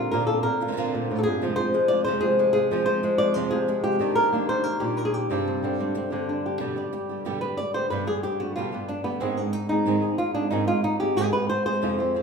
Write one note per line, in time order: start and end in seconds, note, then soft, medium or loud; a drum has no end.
0.00 0.11 A#2 medium
0.00 0.44 D3 medium
0.00 0.12 A#3 soft
0.00 0.13 C4 soft
0.00 0.15 C4 soft
0.00 0.12 F4 soft
0.00 0.45 F4 medium
0.12 0.28 A#2 medium
0.12 0.46 A#2 medium
0.12 0.29 D3 medium
0.12 0.29 A#3 medium
0.12 0.29 C4 medium
0.12 0.28 F4 medium
0.12 0.26 A#4 medium
0.27 0.45 C4 soft
0.27 0.43 F4 soft
0.27 0.43 A4 medium
0.31 0.46 A#3 soft
0.43 1.42 D3 medium
0.43 0.61 C4 soft
0.43 0.61 F4 soft
0.43 1.18 A#4 medium
0.47 0.61 A#3 soft
0.61 0.78 F4 soft
0.61 muted nylon-string guitar stroke soft
0.68 0.71 D3 soft
0.68 0.72 A#3 soft
0.68 0.72 C4 soft
0.68 0.72 F4 soft
0.72 0.76 D3 medium
0.72 0.76 A#3 medium
0.72 0.77 C4 medium
0.72 0.77 F4 medium
0.77 1.09 A#2 medium
0.77 1.08 D3 medium
0.77 1.09 A#3 medium
0.77 1.10 C4 medium
0.77 1.10 F4 medium
0.77 1.74 F4 soft
0.94 1.26 A#2 medium
0.94 1.91 C4 soft
1.09 1.26 A2 medium
1.09 1.25 D3 soft
1.09 1.26 A#3 soft
1.09 1.26 C4 soft
1.09 1.24 F4 soft
1.19 1.23 A4 medium
1.23 1.43 G2 medium
1.23 1.42 C4 soft
1.23 1.41 F4 soft
1.23 1.56 G#4 medium
1.28 1.42 A#3 soft
1.41 1.57 F2 medium
1.41 1.58 C3 medium
1.41 1.58 F3 medium
1.41 2.70 F3 medium
1.41 1.58 G#3 medium
1.41 1.58 C4 medium
1.41 1.57 F4 medium
1.56 1.73 G#3 soft
1.56 1.73 C4 soft
1.56 1.74 F4 soft
1.56 1.88 C5 medium
1.60 1.73 F3 soft
1.74 2.38 G#3 medium
1.74 2.19 G#4 soft
1.74 muted nylon-string guitar stroke soft
1.88 2.06 F3 soft
1.88 2.07 G#3 soft
1.88 2.06 C4 soft
1.88 2.06 F4 soft
1.88 2.04 D5 loud
2.04 2.22 F2 medium
2.04 2.22 C3 medium
2.04 2.23 F3 medium
2.04 2.22 G#3 medium
2.04 2.22 C4 medium
2.04 2.21 F4 medium
2.04 2.54 C5 medium
2.21 2.69 C3 medium
2.21 2.38 F3 soft
2.21 2.38 G#3 soft
2.21 2.38 C4 soft
2.21 2.38 F4 soft
2.21 2.52 G#4 medium
2.39 2.70 G#3 soft
2.39 muted nylon-string guitar stroke soft
2.53 2.71 F3 soft
2.53 2.71 G#3 soft
2.53 2.71 C4 soft
2.53 2.70 F4 soft
2.53 3.19 G#4 medium
2.71 2.87 F2 medium
2.71 2.87 C3 medium
2.71 3.99 F3 medium
2.71 2.87 F3 medium
2.71 2.87 G#3 medium
2.71 2.86 C4 medium
2.71 2.85 F4 medium
2.86 3.02 F3 soft
2.86 3.03 G#3 soft
2.86 3.03 C4 soft
2.86 3.03 F4 soft
2.86 3.18 C5 loud
3.03 3.68 G#3 medium
3.03 muted nylon-string guitar stroke medium
3.18 3.35 F3 soft
3.18 3.35 G#3 soft
3.18 3.36 C4 soft
3.18 3.35 F4 soft
3.18 3.34 D5 medium
3.34 3.51 F2 medium
3.34 3.51 C3 medium
3.34 3.52 F3 medium
3.34 3.52 G#3 medium
3.34 3.51 C4 medium
3.34 3.50 F4 medium
3.34 3.84 C5 medium
3.51 3.99 C3 medium
3.51 3.67 F3 soft
3.51 3.68 G#3 soft
3.51 3.68 C4 soft
3.51 3.67 F4 soft
3.51 3.83 G#4 medium
3.68 3.99 G#3 soft
3.68 muted nylon-string guitar stroke medium
3.83 3.99 F3 soft
3.83 4.00 G#3 soft
3.83 4.00 C4 soft
3.83 4.00 F4 soft
3.83 4.49 G4 medium
3.99 4.31 D#3 medium
3.99 5.28 D#3 medium
3.99 4.32 G3 medium
3.99 4.33 D4 medium
3.99 4.33 G4 medium
4.15 4.49 A#4 medium
4.32 4.48 D#3 soft
4.32 4.49 G3 soft
4.32 5.28 A#3 medium
4.32 5.47 D4 soft
4.32 4.49 D4 soft
4.32 4.48 G4 medium
4.49 4.65 G3 soft
4.49 4.65 D4 soft
4.49 4.65 G4 soft
4.49 4.64 C5 medium
4.64 4.96 A#4 loud
4.64 muted nylon-string guitar stroke medium
4.80 5.28 A#2 medium
4.80 5.31 G3 soft
4.80 5.31 D4 soft
4.80 5.05 G4 medium
4.80 5.32 G4 soft
4.97 5.30 A#4 medium
5.05 5.14 G#4 medium
5.14 6.29 G4 medium
5.30 5.62 G2 medium
5.30 6.59 G2 medium
5.30 5.62 C3 medium
5.30 5.61 G3 medium
5.30 5.62 C4 medium
5.30 5.63 D4 medium
5.30 5.63 G4 medium
5.48 5.63 C4 soft
5.63 6.11 D3 medium
5.63 5.78 G3 soft
5.63 5.79 C4 soft
5.63 5.79 D4 soft
5.63 5.78 G4 soft
5.79 5.94 G3 soft
5.79 5.96 C4 soft
5.79 5.94 C4 soft
5.79 5.94 D4 soft
5.79 5.94 G4 soft
5.95 6.12 C4 soft
5.95 muted nylon-string guitar stroke medium
6.10 6.59 D3 medium
6.10 6.60 G3 soft
6.10 6.60 C4 soft
6.10 6.59 C4 soft
6.10 6.60 D4 soft
6.10 6.59 G4 soft
6.29 6.59 D4 soft
6.46 6.59 G4 soft
6.59 6.76 G2 medium
6.59 6.76 B2 medium
6.59 6.76 D3 medium
6.59 6.76 G3 medium
6.59 7.90 G3 medium
6.59 6.76 B3 medium
6.59 6.75 G4 medium
6.76 6.92 D3 soft
6.76 6.92 G3 soft
6.76 6.92 B3 soft
6.76 6.92 G4 soft
6.76 7.56 D5 soft
6.93 7.25 G4 soft
6.93 muted nylon-string guitar stroke soft
7.09 7.25 D3 soft
7.09 7.25 G3 soft
7.09 7.25 B3 soft
7.09 7.25 G4 soft
7.25 7.41 G2 medium
7.25 7.41 B2 medium
7.25 7.42 D3 medium
7.25 7.42 G3 medium
7.25 7.42 B3 medium
7.25 7.41 G4 medium
7.25 7.40 G4 medium
7.41 7.57 D3 soft
7.41 7.58 G3 soft
7.41 7.58 B3 soft
7.41 7.58 G4 soft
7.41 7.58 B4 medium
7.57 7.74 D5 medium
7.57 muted nylon-string guitar stroke soft
7.74 7.91 D3 soft
7.74 7.91 G3 soft
7.74 7.91 B3 soft
7.74 7.90 G4 soft
7.74 7.90 C5 medium
7.90 8.07 G2 medium
7.90 9.20 G2 medium
7.90 8.07 B2 medium
7.90 8.07 D3 medium
7.90 8.07 G3 medium
7.90 8.07 B3 medium
7.90 8.06 G4 medium
7.90 8.07 B4 medium
8.07 8.23 D3 soft
8.07 8.23 G3 soft
8.07 8.23 B3 soft
8.07 8.23 G4 soft
8.07 8.23 G#4 medium
8.23 8.40 G4 medium
8.23 muted nylon-string guitar stroke medium
8.40 8.56 D3 soft
8.40 8.56 G3 soft
8.40 8.56 B3 soft
8.40 8.55 F#4 medium
8.40 8.56 G4 soft
8.56 8.72 G2 medium
8.56 8.72 B2 medium
8.56 8.72 D3 medium
8.56 8.73 G3 medium
8.56 8.72 B3 medium
8.56 8.88 F4 medium
8.56 8.71 G4 medium
8.72 8.88 D3 soft
8.72 8.88 G3 soft
8.72 8.88 B3 soft
8.72 9.03 B3 soft
8.72 8.88 G4 soft
8.89 9.04 D4 medium
8.89 muted nylon-string guitar stroke soft
9.04 9.21 D3 soft
9.04 9.21 G3 soft
9.04 9.21 B3 medium
9.04 9.21 B3 soft
9.04 9.20 G4 soft
9.20 9.37 G#2 medium
9.20 10.50 G#2 medium
9.20 9.37 D#3 medium
9.20 9.37 G#3 medium
9.20 9.37 C4 medium
9.20 9.37 D#4 medium
9.20 9.36 G#4 medium
9.37 9.54 G#3 soft
9.37 9.54 C4 soft
9.37 9.53 D4 medium
9.37 9.54 D#4 soft
9.37 9.53 G#4 soft
9.53 9.68 D#4 medium
9.53 muted nylon-string guitar stroke soft
9.69 9.85 G#3 soft
9.69 9.86 C4 soft
9.69 10.18 D#4 medium
9.69 9.86 D#4 soft
9.69 9.86 G#4 soft
9.86 10.02 G#2 medium
9.86 10.02 D#3 medium
9.86 10.02 G#3 medium
9.86 10.03 C4 medium
9.86 11.36 C4 soft
9.86 10.02 D#4 medium
9.86 10.01 G#4 medium
10.02 10.18 G#3 soft
10.02 10.18 C4 soft
10.02 10.18 D#4 soft
10.02 10.18 G#4 soft
10.18 10.34 F4 medium
10.18 muted nylon-string guitar stroke soft
10.34 10.50 G#3 soft
10.34 10.51 C4 soft
10.34 10.50 D4 medium
10.34 10.51 D#4 soft
10.34 10.51 G#4 soft
10.50 10.67 G#2 medium
10.50 11.81 G#2 medium
10.50 10.67 D#3 medium
10.50 10.67 G#3 medium
10.50 10.67 C4 medium
10.50 10.67 D#4 medium
10.50 10.66 D#4 medium
10.50 10.66 G#4 medium
10.67 10.83 G#3 soft
10.67 10.83 C4 soft
10.67 10.84 D#4 soft
10.67 10.84 F4 medium
10.67 10.83 G#4 soft
10.84 10.99 D#4 medium
10.84 muted nylon-string guitar stroke medium
11.00 11.16 G#3 soft
11.00 11.16 C4 soft
11.00 11.16 D#4 soft
11.00 11.17 G4 medium
11.00 11.16 G#4 soft
11.16 11.32 G#2 medium
11.16 11.33 D#3 medium
11.16 11.33 G#3 medium
11.16 11.33 C4 medium
11.16 11.32 D#4 medium
11.16 11.32 G#4 medium
11.16 11.31 G#4 medium
11.32 11.49 G#3 soft
11.32 11.49 C4 soft
11.32 11.49 D#4 soft
11.32 11.49 G#4 soft
11.32 11.49 B4 medium
11.49 11.65 C5 medium
11.49 muted nylon-string guitar stroke soft
11.66 11.82 G#3 soft
11.66 11.82 C4 soft
11.66 11.82 D#4 soft
11.66 11.81 G#4 soft
11.66 12.15 C5 medium
11.82 11.98 F2 medium
11.82 12.22 F2 medium
11.82 11.98 C3 medium
11.82 11.98 F3 medium
11.82 11.98 G#3 medium
11.82 11.98 C4 medium
11.82 11.97 F4 medium
11.98 12.13 F3 soft
11.98 12.14 G#3 soft
11.98 12.14 C4 soft
11.98 12.16 C4 soft
11.98 12.14 F4 soft
12.15 12.22 F3 soft
12.15 12.22 G#3 soft
12.15 12.22 C4 soft
12.15 12.22 F4 soft